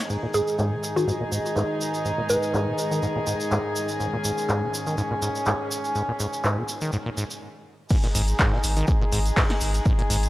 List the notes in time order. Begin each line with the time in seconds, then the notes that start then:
0.10 G#2 D#3 D#4 G#4, shaker
0.23 A#2
0.34 G#2 G#4, shaker
0.48 shaker
0.59 G#2, clap, shaker
0.72 B2
0.83 shaker
0.96 D#3 F#4, shaker
1.08 G#2, shaker
1.21 A#2
1.32 G#2, shaker
1.46 shaker
1.56 G#2, clap, shaker
1.81 shaker
1.94 shaker
2.05 G#2, shaker
2.18 A#2
2.29 G#2 B4, shaker
2.43 shaker
2.54 G#2, clap, shaker
2.67 B2
2.78 shaker
2.91 D#3, shaker
3.03 G#2, shaker
3.16 A#2
3.27 G#2, shaker
3.40 shaker
3.51 G#2, clap, shaker
3.76 shaker
3.88 shaker
4.00 G#2 C#4, shaker
4.13 A#2
4.24 G#2, shaker
4.38 shaker
4.49 G#2, clap, shaker
4.62 B2
4.74 shaker
4.87 D#3, shaker
4.98 G#2, shaker
5.11 A#2
5.22 G#2, shaker
5.35 shaker
5.46 G#2, clap, shaker
5.71 shaker
5.84 shaker
5.95 G#2, shaker
6.08 A#2
6.20 G#2, shaker
6.33 shaker
6.44 G#2, clap, shaker
6.57 B2
6.68 shaker
6.81 D#3, shaker
6.92 G#2, shaker
7.06 A#2
7.17 G#2, shaker
7.30 shaker
7.89 G#2 G#3 D#4 G#4, kick, crash, shaker
8.04 A#2, snare, closed hi-hat
8.15 G#1 G#2, open hi-hat, shaker
8.28 closed hi-hat, shaker
8.39 G#2, kick, snare, clap, shaker
8.52 B2, snare
8.63 G#1, open hi-hat, shaker
8.77 D#3, closed hi-hat, shaker
8.87 G#2, kick, shaker
9.01 A#2
9.12 G#1 G#2, open hi-hat, shaker
9.26 closed hi-hat, shaker
9.36 G#2, kick, snare, clap, open hi-hat, shaker
9.50 snare, closed hi-hat
9.61 G#1, open hi-hat, shaker
9.74 closed hi-hat, shaker
9.85 G#2, kick, shaker
9.99 A#2, closed hi-hat
10.10 G#1 G#2, open hi-hat, shaker
10.23 closed hi-hat, shaker